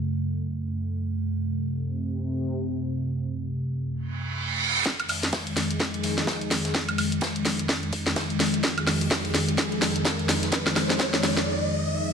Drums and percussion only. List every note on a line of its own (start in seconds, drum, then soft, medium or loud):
4.86 kick loud
4.86 snare soft
4.86 ride medium
5.00 closed hi-hat medium
5.00 high woodblock medium
5.09 open hi-hat medium
5.09 open hi-hat loud
5.09 high woodblock medium
5.23 snare soft
5.23 closed hi-hat medium
5.33 kick loud
5.33 snare loud
5.33 ride medium
5.47 closed hi-hat medium
5.57 snare soft
5.57 open hi-hat loud
5.57 ride medium
5.71 closed hi-hat medium
5.80 kick loud
5.80 snare medium
5.80 ride medium
5.94 closed hi-hat soft
6.03 snare soft
6.03 open hi-hat loud
6.03 ride medium
6.18 snare soft
6.18 closed hi-hat medium
6.27 kick loud
6.27 snare loud
6.27 ride medium
6.41 closed hi-hat soft
6.51 snare medium
6.51 open hi-hat loud
6.51 ride medium
6.65 snare soft
6.65 closed hi-hat medium
6.74 kick loud
6.74 snare medium
6.74 ride medium
6.89 closed hi-hat medium
6.89 ride soft
6.89 high woodblock medium
6.98 open hi-hat loud
6.98 ride medium
6.98 high woodblock medium
7.12 closed hi-hat medium
7.21 kick loud
7.21 snare loud
7.21 ride medium
7.36 closed hi-hat medium
7.45 snare medium
7.45 open hi-hat loud
7.45 ride medium
7.59 closed hi-hat medium
7.69 kick loud
7.69 snare medium
7.69 ride medium
7.83 closed hi-hat soft
7.92 kick medium
7.92 open hi-hat loud
7.92 ride medium
8.07 snare medium
8.07 closed hi-hat medium
8.16 kick loud
8.16 snare loud
8.16 ride medium
8.30 closed hi-hat soft
8.40 snare medium
8.40 open hi-hat loud
8.40 ride medium
8.54 closed hi-hat medium
8.63 kick loud
8.63 snare medium
8.63 ride medium
8.78 closed hi-hat soft
8.78 high woodblock medium
8.87 snare medium
8.87 open hi-hat medium
8.87 open hi-hat loud
8.87 high woodblock medium
9.01 closed hi-hat medium
9.11 kick loud
9.11 snare medium
9.11 snare loud
9.11 ride medium
9.25 closed hi-hat medium
9.35 snare medium
9.35 open hi-hat loud
9.35 ride medium
9.49 closed hi-hat medium
9.58 kick loud
9.58 snare medium
9.58 ride medium
9.72 closed hi-hat soft
9.82 snare medium
9.82 open hi-hat loud
9.82 ride medium
9.96 closed hi-hat medium
10.05 kick loud
10.05 snare loud
10.05 snare medium
10.05 ride medium
10.19 closed hi-hat soft
10.29 snare medium
10.29 open hi-hat loud
10.29 ride medium
10.43 snare soft
10.43 closed hi-hat medium
10.52 kick loud
10.52 snare medium
10.52 ride medium
10.67 snare medium
10.67 closed hi-hat soft
10.67 ride soft
10.67 high woodblock medium
10.76 snare loud
10.76 open hi-hat loud
10.76 ride medium
10.76 high woodblock medium
10.90 snare medium
10.90 closed hi-hat medium
10.99 kick loud
10.99 snare loud
10.99 ride medium
11.14 snare medium
11.14 closed hi-hat soft
11.23 snare loud
11.23 open hi-hat loud
11.23 ride medium
11.37 snare medium
11.37 closed hi-hat medium